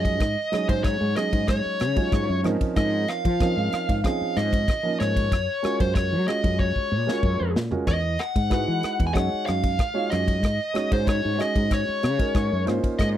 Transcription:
Already playing: F#2 F3 G#3 C#4 D#4 G#4 D#5
0.05 kick, ride
0.20 G#2, kick, cross-stick, ride
0.52 F#3 G#3 C#4 D#4 G#4, muted fretless electric bass stroke, cross-stick, ride
0.69 G#2 C5, kick, ride
0.84 C#5, kick, cross-stick, ride
1.01 G#2
1.16 F#3 G#3 C#4 D#4 G#4 D#5, cross-stick, ride
1.33 G#2, kick, ride
1.48 C#5, kick, cross-stick, ride
1.65 muted fretless electric bass stroke
1.80 C#3, cross-stick, ride
1.96 F#3 G#3 C#4 D#4 F4, kick, ride
2.12 G#2, kick, cross-stick, ride
2.29 F#2
2.44 G#2 F3 C4 C#4 D#4 A#4, cross-stick, ride
2.61 muted fretless electric bass stroke, kick, ride
2.76 G#2 D#5, kick, cross-stick, ride
3.08 F5, cross-stick, ride
3.25 F3, kick, ride
3.40 F3 C4 C#4 D#4 A#4, kick, cross-stick, ride
3.57 G#2
3.73 muted fretless electric bass stroke, cross-stick, ride
3.89 G#2, kick, ride
4.04 F3 C4 C#4 D#4 G#4 F5, kick, cross-stick, ride
4.21 muted fretless electric bass stroke
4.36 G#2 D#5, cross-stick, ride
4.53 kick, ride
4.68 kick, cross-stick, ride
4.83 F3 A#3 C#4 D#4 A#4
5.00 G#2 C#5, cross-stick, ride
5.16 kick, ride
5.32 F#2, kick, cross-stick, ride
5.63 G#3 C#4 F4 F#4 A#4, muted fretless electric bass stroke, cross-stick, ride
5.80 F#2 C5, kick, ride
5.95 C#5, kick, cross-stick, ride
6.12 F#3
6.26 G#3 C#4 F4 F#4 G#4 D#5, cross-stick, ride
6.44 F#2, kick, ride
6.59 C#5, kick
6.76 muted fretless electric bass stroke, kick
6.91 A#2
7.06 G#3 C#4 F4 F#4 A#4, snare
7.23 F#2, kick
7.40 F2
7.55 A#2, snare
7.71 G#3 C#4 F4 F#4 A#4, muted fretless electric bass stroke, floor tom
7.87 E2 D#5, kick, cross-stick, ride
8.19 F#5, cross-stick, ride
8.36 G#2, kick, ride
8.50 G#3 D#4 E4 F#4 B4, kick, cross-stick, ride
8.68 E3
8.83 muted fretless electric bass stroke, cross-stick, ride
9.00 E2, kick, ride
9.07 G#5
9.13 F#2 G#3 D#4 F#4 G#4 C#5 F#5, kick, cross-stick, ride
9.33 muted fretless electric bass stroke
9.46 F#2 F5, cross-stick, ride
9.63 kick, ride
9.79 kick, cross-stick, ride
9.94 G#3 D#4 F4 F#4 C#5
10.10 F#2 D#5, cross-stick, ride
10.28 kick, ride
10.43 G#2, kick, cross-stick, ride
10.74 G#3 C#4 D#4 F#4 C#5, muted fretless electric bass stroke, cross-stick, ride
10.92 G#2 C5, kick, ride
11.07 C#5, kick, cross-stick, ride
11.25 G#2
11.38 G#3 C#4 D#4 F#4 D#5, cross-stick, ride
11.56 G#2, kick, ride
11.71 C#5, kick, cross-stick, ride
11.88 muted fretless electric bass stroke
12.03 C#3, cross-stick, ride
12.18 G#3 C#4 D#4 F#4 A#4, kick, ride
12.35 G#2, kick, cross-stick, ride
12.52 F#2
12.66 G#2 A#3 C#4 D#4 F4 C5, cross-stick, ride
12.84 kick, ride
12.99 G#2 D#5, kick, cross-stick, ride

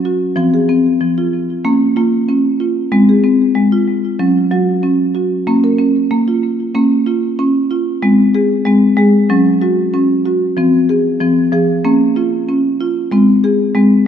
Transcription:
0.05 F#4
0.36 F3 C4
0.54 G#4
0.69 C4
1.01 F3
1.18 F4
1.65 A#3 C#4
1.96 A#3 F4
2.29 C#4
2.60 F4
2.92 G#3 C4
3.09 G#4
3.24 C4
3.55 G#3
3.72 F4
4.19 F#3 C#4
4.51 F#3 F#4
4.83 C#4
5.15 F#4
5.47 A#3 C#4
5.64 A#4
5.78 C#4
6.11 A#3
6.28 F4
6.75 A#3 C#4
7.07 F4
7.39 C#4
7.71 F4
8.03 G#3 C4
8.35 G#4
8.65 G#3 C4
8.97 G#3 G#4
9.30 F#3 C#4
9.62 F#4
9.94 C#4
10.26 F#4
10.57 F3 C4
10.89 G#4
11.20 F3 C4
11.52 F3 G#4
11.85 A#3 C#4
12.16 F4
12.49 C#4
12.80 F4
13.12 G#3 C4
13.44 G#4
13.75 G#3 C4

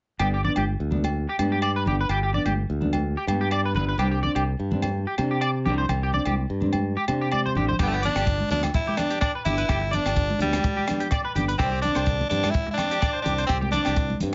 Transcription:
0.19 G1 G3 B3 D4 G4, low agogo
0.34 G4
0.44 B3 D4 D5, low conga
0.56 G1 G4, high conga, low agogo
0.80 D2
0.91 B3 D4, high conga, low conga
1.04 high conga, low agogo
1.29 G4
1.39 G2 B3 D4, high conga, low agogo
1.52 G4
1.62 D5, low agogo
1.76 B4
1.85 G1 B3 D4 G4, low conga
2.01 B4
2.09 G1 G4, low agogo
2.23 G4
2.33 B3 D4 D5, low conga
2.45 G1 G4, high conga, low agogo
2.70 D2
2.81 B3 D4, high conga, low conga
2.93 high conga, low agogo
3.17 G4
3.27 G2 B3, high conga, low agogo
3.41 G4
3.51 D5, low agogo
3.65 B4
3.75 G1 B3 D4 B4, low conga
3.89 B4
3.98 C2 G3 C4 D4 G4, low agogo
4.11 G4
4.23 C4 D4 D5, low conga
4.35 C2 G4, low agogo
4.59 G2
4.71 C4 D4, high conga, low conga
4.82 high conga, low agogo
5.07 G4
5.18 C3 C4 D4, high conga, low agogo
5.31 G4
5.41 D5, low agogo
5.65 C2 C4 D4 G4, low conga
5.78 C5
5.89 C2, muted clean electric guitar stroke, low conga, low agogo
6.03 G4
6.13 C4 D4 D5, low conga
6.25 C2 G4, high conga, low agogo
6.50 G2
6.60 C4 D4, high conga, low conga
6.73 high conga, low agogo
6.97 G4
7.08 C3 C4 D4, high conga, low agogo
7.21 G4
7.32 D5, high conga, low agogo
7.46 C5, high conga
7.55 A1 C4 D4 G4, low conga
7.69 C5, low conga
7.79 G1 G3 B3 D4 G4, kick, cross-stick, crash, low agogo
7.86 A3
7.92 B3 G4
8.02 B3 D4 D5, closed hi-hat, low conga
8.16 G1 G4, cross-stick, closed hi-hat, low agogo
8.27 kick, closed hi-hat
8.40 high conga
8.50 D2 B3 D4, closed hi-hat, low conga
8.63 cross-stick, closed hi-hat, high conga, low agogo
8.74 E4, kick, closed hi-hat, high conga
8.87 G4, high conga
8.97 B3 D4, cross-stick, closed hi-hat, low conga, low agogo
9.10 G4, closed hi-hat
9.21 D4 D5, kick, cross-stick, closed hi-hat, low agogo
9.35 B4
9.45 G1 B3 D4 E4 G4, closed hi-hat, low conga
9.58 B4, closed hi-hat
9.69 G1 G4, kick, cross-stick, closed hi-hat, low agogo
9.82 muted clean electric guitar stroke
9.91 B3 D4 D5, closed hi-hat, low conga
10.05 G1, cross-stick, closed hi-hat, low agogo
10.16 kick, closed hi-hat
10.30 high conga
10.39 D2 G3 B3 D4, closed hi-hat, low conga
10.53 cross-stick, closed hi-hat, high conga, low agogo
10.64 kick, closed hi-hat, high conga
10.77 G4, high conga
10.87 B3 D4, cross-stick, closed hi-hat, low conga, low agogo
11.00 G4, closed hi-hat
11.11 D5, kick, cross-stick, closed hi-hat, low agogo
11.25 B4
11.35 G1 B3 D4 G4, closed hi-hat, low conga
11.48 B4, closed hi-hat
11.58 C2 G3 C4 D4 G4, kick, cross-stick, closed hi-hat, low agogo
11.72 G4
11.81 D4 D5, closed hi-hat, low conga
11.86 C4
11.95 C2 C5, cross-stick, closed hi-hat, low agogo
12.06 kick, closed hi-hat
12.21 high conga
12.29 G2 C4 D4, closed hi-hat, low conga
12.43 cross-stick, closed hi-hat, high conga, low agogo
12.50 E4, closed hi-hat
12.55 kick
12.67 muted clean electric guitar stroke, high conga
12.71 D4 E4
12.78 C4 D4, cross-stick, closed hi-hat, low conga, low agogo
12.91 G4, closed hi-hat
13.01 D5, kick, cross-stick, closed hi-hat, low agogo
13.13 C5
13.22 C2 D4 G4, closed hi-hat, low conga
13.27 C4 D4
13.38 C5, closed hi-hat
13.47 C2 C4 G4, kick, cross-stick, closed hi-hat, low agogo
13.61 G4, high conga
13.72 C4 D4 D5, closed hi-hat, low conga
13.85 C2 G4, cross-stick, closed hi-hat, low agogo
13.96 kick, closed hi-hat
14.10 high conga
14.20 G2 C4 D4, closed hi-hat, low conga

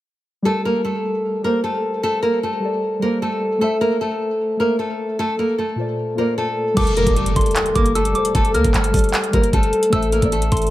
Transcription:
0.42 G3 A3 G4 A4
0.48 A#4
0.65 A#3 A#4
0.85 A3 A4
1.41 G3 A#3 G4 A4 A#4
1.47 C5
1.64 A3 A4
2.03 A3 A4
2.23 A#3 A#4
2.43 A3 A4
2.60 G3 G4 A4
2.65 D5
2.99 G3 A#3 G4 A4 A#4
3.05 C5
3.22 A3 A4
3.58 A3 A4 C5
3.64 E5
3.81 A#3 A#4
4.01 A3 A4
4.57 A3 A#3 A4 A#4 C5
4.62 E5
4.79 A3 A4
5.19 A3 A4
5.39 A#3 A#4
5.58 A3 A4
5.76 A#2 F4 C5
5.81 D5
6.15 A#3 F4 A#4 C5
6.19 A#3 D5
6.38 A3 A4
6.74 G1 G3 A3 G4 A4 D6, kick, closed hi-hat, crash, impact
6.79 A#4
6.87 closed hi-hat
6.97 A#3 A#4, closed hi-hat
7.04 G1 G3 G4 A4, kick, closed hi-hat
7.09 D5
7.16 A3 A4, closed hi-hat
7.26 closed hi-hat
7.36 G1 C6, kick, closed hi-hat
7.41 closed hi-hat
7.46 closed hi-hat
7.51 closed hi-hat
7.56 clap, closed hi-hat
7.66 closed hi-hat
7.73 G1 G3 A#3 G4 A4 A#4 D6, kick, closed hi-hat
7.78 A#4
7.86 closed hi-hat
7.95 A3 A4 E6, closed hi-hat
8.05 closed hi-hat
8.12 G3 G4 A4 D6, closed hi-hat
8.18 C5
8.25 closed hi-hat
8.35 G1 A3 A4, kick, closed hi-hat
8.45 closed hi-hat
8.54 D2 A#3 A#4 F6, closed hi-hat
8.64 G1, kick, closed hi-hat
8.74 G1 A3 A4, clap, closed hi-hat
8.84 closed hi-hat
8.91 G1 G3 G4 A4, kick, closed hi-hat, open hi-hat
8.97 D5, closed hi-hat
9.04 closed hi-hat
9.09 closed hi-hat
9.14 clap, closed hi-hat
9.24 closed hi-hat
9.31 G1 G3 A#3 G4 A4 A#4, kick, closed hi-hat
9.36 C5
9.43 closed hi-hat
9.53 G1 A3 A4, kick, closed hi-hat
9.63 closed hi-hat
9.73 closed hi-hat
9.83 closed hi-hat
9.90 A1 A3 A4 C5 E6, kick, closed hi-hat
9.95 E5
10.03 closed hi-hat
10.12 A#3 A#4, closed hi-hat
10.20 A1 A3 A4 C5, kick, closed hi-hat
10.25 D5
10.32 A3 A4, closed hi-hat
10.42 closed hi-hat
10.52 A1 C6, kick, closed hi-hat
10.57 closed hi-hat
10.62 closed hi-hat
10.67 closed hi-hat

